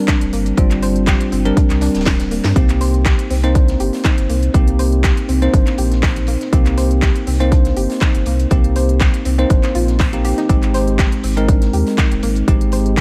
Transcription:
Already playing: G3 C4 D4 A#4
0.08 D4, kick, snare, clap, closed hi-hat
0.21 D1, closed hi-hat
0.33 G1 A#3, closed hi-hat, open hi-hat
0.46 closed hi-hat
0.57 G1 G3 C4 D4 F4, kick, closed hi-hat
0.71 clap, closed hi-hat
0.82 C5, snare, closed hi-hat, open hi-hat
0.96 closed hi-hat
1.07 G4, kick, snare, clap, closed hi-hat
1.21 closed hi-hat
1.32 G1 C4, closed hi-hat, open hi-hat
1.45 G3 C4 D4 A#4, closed hi-hat
1.57 D4, kick, closed hi-hat
1.70 C2, snare, clap, closed hi-hat
1.81 D4, snare, closed hi-hat, open hi-hat
1.95 D1, snare, closed hi-hat
2.01 snare, closed hi-hat
2.06 D4, kick, snare, clap, closed hi-hat, open hi-hat
2.20 snare, closed hi-hat
2.31 A#3, closed hi-hat, open hi-hat
2.44 G2, snare, closed hi-hat
2.56 C2 A#3 C4 D#4 G4, kick, closed hi-hat
2.69 clap, closed hi-hat
2.81 C5, snare, closed hi-hat, open hi-hat
2.94 closed hi-hat
3.06 G4, kick, snare, clap, closed hi-hat
3.19 closed hi-hat
3.30 C2 C4, open hi-hat
3.43 A#3 C4 D#4 C5, closed hi-hat
3.55 D4, kick, closed hi-hat
3.68 snare, closed hi-hat
3.80 G1 G4, closed hi-hat, open hi-hat
3.93 snare, open hi-hat
4.04 D#4, kick, snare, clap, closed hi-hat
4.18 G1, closed hi-hat
4.30 C2 A#3, closed hi-hat, open hi-hat
4.42 closed hi-hat
4.54 C2 A#3 C4 D#4 G4, kick, closed hi-hat
4.68 closed hi-hat
4.79 C5, snare, closed hi-hat, open hi-hat
4.92 closed hi-hat
5.03 G4, kick, snare, clap, closed hi-hat
5.17 closed hi-hat
5.29 C2 C4, closed hi-hat, open hi-hat
5.42 A#3 C4 D#4 C5, closed hi-hat
5.54 G1 D4, kick, closed hi-hat
5.67 snare, clap, closed hi-hat
5.78 A#1 G4, closed hi-hat, open hi-hat
5.92 snare, closed hi-hat
6.03 D#4, kick, snare, clap, closed hi-hat, open hi-hat
6.16 closed hi-hat
6.27 A#3, closed hi-hat, open hi-hat
6.41 snare, closed hi-hat
6.53 C2 A#3 C4 D#4 G4, kick, closed hi-hat
6.66 clap, closed hi-hat
6.78 C5, snare, closed hi-hat, open hi-hat
6.91 closed hi-hat
7.02 G4, kick, snare, clap, closed hi-hat
7.15 closed hi-hat
7.27 C2 C4, open hi-hat
7.40 A#3 C4 D#4 C5, closed hi-hat
7.52 D4, kick, closed hi-hat
7.65 snare, closed hi-hat
7.77 G1 G4, closed hi-hat, open hi-hat
7.90 snare, open hi-hat
8.01 D#4, kick, snare, clap, closed hi-hat
8.15 G1, closed hi-hat
8.26 C2 A#3, closed hi-hat, open hi-hat
8.39 closed hi-hat
8.51 C2 A#3 C4 D#4 G4, kick, closed hi-hat
8.64 closed hi-hat
8.75 C5, snare, closed hi-hat, open hi-hat
8.89 closed hi-hat
9.00 G4, kick, snare, clap, closed hi-hat
9.14 closed hi-hat
9.25 C2 C4, closed hi-hat, open hi-hat
9.38 A#3 C4 D#4 C5, closed hi-hat
9.50 G1 D4, kick, closed hi-hat
9.63 snare, clap, closed hi-hat
9.75 A#1 F4, closed hi-hat, open hi-hat
9.88 snare, closed hi-hat
9.99 C5, kick, snare, clap, closed hi-hat, open hi-hat
10.13 A#3 C4 D#4 G4, closed hi-hat
10.25 G4, closed hi-hat, open hi-hat
10.38 D#4, snare, closed hi-hat
10.49 G#1 G#3 C4 D#4 G4, kick, closed hi-hat
10.63 clap, closed hi-hat
10.74 C5, snare, closed hi-hat, open hi-hat
10.87 closed hi-hat
10.99 G4, kick, snare, clap, closed hi-hat
11.12 closed hi-hat
11.23 G#1 C4, open hi-hat
11.37 G#3 C4 D#4 A#4, closed hi-hat
11.48 D4, kick, closed hi-hat
11.61 snare, closed hi-hat
11.73 D#2 G4, closed hi-hat, open hi-hat
11.86 snare, open hi-hat
11.98 D#4, kick, snare, clap, closed hi-hat
12.11 D#1, closed hi-hat
12.23 G#1 A#3, closed hi-hat, open hi-hat
12.35 closed hi-hat
12.48 G#1 G#3 C4 D#4 G4, kick, closed hi-hat
12.61 closed hi-hat
12.72 C5, snare, closed hi-hat, open hi-hat
12.86 closed hi-hat
12.97 G4, kick, snare, clap, closed hi-hat

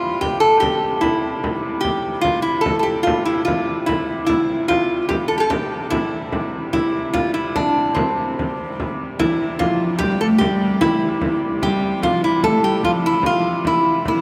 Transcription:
Already playing: C3 G3 F4
0.21 G4, frame drum
0.40 A4, frame drum
0.60 G4, frame drum
0.82 frame drum
1.01 E4, frame drum
1.44 frame drum
1.64 frame drum
1.81 G4
1.85 frame drum
2.05 frame drum
2.21 F4, frame drum
2.42 E4
2.61 A4
2.66 frame drum
2.79 G4 A4
2.86 frame drum
3.03 F4
3.07 frame drum
3.25 E4
3.45 F4, frame drum
3.86 E4, frame drum
4.26 C3 G3 E4, frame drum
4.49 frame drum
4.68 F4, frame drum
5.09 G4, frame drum
5.28 A4, frame drum
5.38 G4 A4
5.50 G4, frame drum
5.72 frame drum
5.90 E4, frame drum
6.32 frame drum
6.53 frame drum
6.73 E4, frame drum
6.94 frame drum
7.14 F4, frame drum
7.34 E4
7.56 D4, frame drum
7.76 frame drum
7.95 C4, frame drum
8.18 frame drum
8.39 frame drum
8.80 frame drum
9.18 C3 E3 G3 E4, frame drum
9.40 E3, frame drum
9.58 F3 F4, frame drum
9.99 G3 G4, frame drum
10.21 A3 A4, frame drum
10.38 G3 G4, frame drum
10.62 frame drum
10.81 E3 E4, frame drum
11.21 frame drum
11.42 frame drum
11.62 G3 G4, frame drum
11.83 frame drum
12.02 F3 F4, frame drum
12.21 E3 E4
12.42 A3 A4, frame drum
12.63 G3 G4, frame drum
12.84 F3 F4, frame drum
13.02 E3 E4, frame drum
13.23 F3 F4, frame drum
13.56 F3
13.64 E3 E4, frame drum
14.05 C3 E3 G3 E4, frame drum

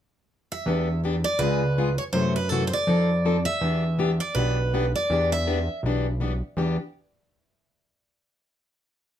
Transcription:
0.52 E5
0.66 E2 E3 B3 D4 G4
1.04 E3 B3 D4 G4
1.24 D5
1.39 C#2 C#3 G#3 B3 F4 G#4 B4
1.78 C#3 G#3 B3 F4 G#4
1.98 C#5
2.13 F#2 C3 E3 A3 E4 F#4 C5
2.36 B4
2.49 C3 E3 A3 E4 F#4 A4
2.67 C5
2.73 D5
2.87 F2 F3 C4 D#4 A4
3.25 F3 C4 D#4 A4
3.45 E5
3.61 E2 E3 B3 D4 G4
3.99 E3 B3 D4 G4
4.20 D5
4.35 B1 E3 B3 D4 G4 B4
4.74 E3 B3 D4 G4
4.96 D5
5.10 E2 E3 B3 D4 G4
5.32 E5
5.47 E3 B3 D4 G4
5.83 B1 E3 B3 D4 G4
6.20 E3 B3 D4 G4
6.57 E2 E3 B3 D4 G4

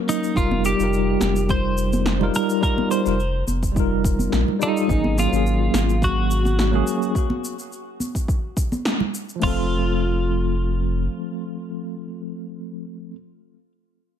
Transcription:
Already playing: F#3 A#3 C#4 A#4 C#5
0.09 D#4, shaker
0.24 shaker
0.34 F1 G3 D#4 F4 A#4, kick, shaker
0.51 high conga
0.65 G4, shaker
0.76 F1 G3 D#4
0.80 F4 A#4, shaker
0.93 shaker
1.20 F1, snare, high conga, shaker
1.36 shaker
1.49 C5, kick, shaker
1.78 shaker
1.93 high conga, shaker
2.06 snare, shaker
2.19 G3 D#4 F4 A#4, low conga
2.35 A#4, shaker
2.50 shaker
2.61 G3 D#4 F4 A#4, kick, shaker
2.78 high conga
2.91 C5, shaker
3.04 F1 G3 D#4 F4 A#4, shaker
3.20 shaker
3.47 F1, high conga, shaker
3.63 kick, shaker
3.72 G3 D#4, kick
3.77 F4 A#4, shaker
4.04 kick, shaker
4.19 high conga, shaker
4.32 A#1, snare, shaker
4.48 low conga
4.59 G3 D#4 F4 A4, shaker
4.77 shaker
4.87 G#1 F#3 A#3 C#4 G#4, kick, shaker
5.04 high conga
5.18 F4, shaker
5.28 G#1 F#3 A#3
5.33 C#4 G#4, shaker
5.46 shaker
5.73 G#1, snare, high conga, shaker
5.90 shaker
6.02 F#4, kick, shaker
6.31 shaker
6.45 high conga, shaker
6.59 snare, shaker
6.72 F#3 A#3 C#4 G#4, low conga
6.87 shaker
7.02 shaker
7.15 kick, shaker
7.30 high conga
7.45 shaker
7.59 shaker
7.72 shaker
8.00 high conga, shaker
8.15 kick, shaker
8.28 kick, shaker
8.57 kick, shaker
8.72 high conga, shaker
8.85 snare, shaker
9.00 low conga
9.14 shaker
9.29 shaker
9.36 F3 A3
9.42 F1 C4 F4, kick, crash
9.47 A4

